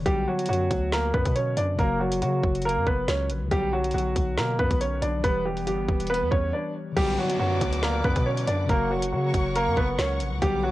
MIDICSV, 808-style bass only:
0, 0, Header, 1, 2, 480
1, 0, Start_track
1, 0, Key_signature, 2, "minor"
1, 0, Tempo, 431655
1, 66, Time_signature, 4, 2, 24, 8
1, 11914, End_track
2, 0, Start_track
2, 0, Title_t, "808-style bass"
2, 0, Program_c, 0, 38
2, 65, Note_on_c, 0, 35, 110
2, 296, Note_off_c, 0, 35, 0
2, 545, Note_on_c, 0, 42, 108
2, 776, Note_off_c, 0, 42, 0
2, 785, Note_on_c, 0, 38, 104
2, 1246, Note_off_c, 0, 38, 0
2, 1265, Note_on_c, 0, 42, 108
2, 1387, Note_off_c, 0, 42, 0
2, 1394, Note_on_c, 0, 47, 100
2, 1732, Note_off_c, 0, 47, 0
2, 1745, Note_on_c, 0, 42, 108
2, 1976, Note_off_c, 0, 42, 0
2, 1986, Note_on_c, 0, 30, 102
2, 2466, Note_on_c, 0, 49, 105
2, 2482, Note_off_c, 0, 30, 0
2, 2694, Note_off_c, 0, 49, 0
2, 2705, Note_on_c, 0, 30, 105
2, 3073, Note_on_c, 0, 42, 98
2, 3090, Note_off_c, 0, 30, 0
2, 3180, Note_off_c, 0, 42, 0
2, 3185, Note_on_c, 0, 30, 99
2, 3416, Note_off_c, 0, 30, 0
2, 3426, Note_on_c, 0, 37, 109
2, 3666, Note_on_c, 0, 34, 103
2, 3682, Note_off_c, 0, 37, 0
2, 3793, Note_on_c, 0, 37, 101
2, 3809, Note_off_c, 0, 34, 0
2, 3900, Note_off_c, 0, 37, 0
2, 3906, Note_on_c, 0, 35, 112
2, 4366, Note_off_c, 0, 35, 0
2, 4385, Note_on_c, 0, 35, 107
2, 4616, Note_off_c, 0, 35, 0
2, 4625, Note_on_c, 0, 35, 107
2, 4866, Note_on_c, 0, 47, 100
2, 4882, Note_off_c, 0, 35, 0
2, 5094, Note_off_c, 0, 47, 0
2, 5105, Note_on_c, 0, 42, 104
2, 5227, Note_off_c, 0, 42, 0
2, 5234, Note_on_c, 0, 35, 105
2, 5572, Note_off_c, 0, 35, 0
2, 5585, Note_on_c, 0, 35, 107
2, 5816, Note_off_c, 0, 35, 0
2, 5826, Note_on_c, 0, 28, 102
2, 6306, Note_on_c, 0, 31, 99
2, 6322, Note_off_c, 0, 28, 0
2, 6534, Note_off_c, 0, 31, 0
2, 6545, Note_on_c, 0, 28, 106
2, 6913, Note_on_c, 0, 40, 100
2, 6930, Note_off_c, 0, 28, 0
2, 7020, Note_off_c, 0, 40, 0
2, 7025, Note_on_c, 0, 40, 102
2, 7256, Note_off_c, 0, 40, 0
2, 7746, Note_on_c, 0, 35, 112
2, 7976, Note_off_c, 0, 35, 0
2, 8226, Note_on_c, 0, 42, 107
2, 8456, Note_off_c, 0, 42, 0
2, 8465, Note_on_c, 0, 38, 106
2, 8926, Note_off_c, 0, 38, 0
2, 8945, Note_on_c, 0, 42, 105
2, 9067, Note_off_c, 0, 42, 0
2, 9074, Note_on_c, 0, 47, 99
2, 9412, Note_off_c, 0, 47, 0
2, 9426, Note_on_c, 0, 42, 103
2, 9656, Note_off_c, 0, 42, 0
2, 9665, Note_on_c, 0, 30, 110
2, 10146, Note_on_c, 0, 49, 104
2, 10162, Note_off_c, 0, 30, 0
2, 10374, Note_off_c, 0, 49, 0
2, 10385, Note_on_c, 0, 30, 107
2, 10753, Note_on_c, 0, 42, 99
2, 10769, Note_off_c, 0, 30, 0
2, 10860, Note_off_c, 0, 42, 0
2, 10865, Note_on_c, 0, 30, 105
2, 11096, Note_off_c, 0, 30, 0
2, 11106, Note_on_c, 0, 37, 110
2, 11346, Note_on_c, 0, 34, 101
2, 11363, Note_off_c, 0, 37, 0
2, 11473, Note_on_c, 0, 37, 98
2, 11490, Note_off_c, 0, 34, 0
2, 11580, Note_off_c, 0, 37, 0
2, 11585, Note_on_c, 0, 35, 115
2, 11914, Note_off_c, 0, 35, 0
2, 11914, End_track
0, 0, End_of_file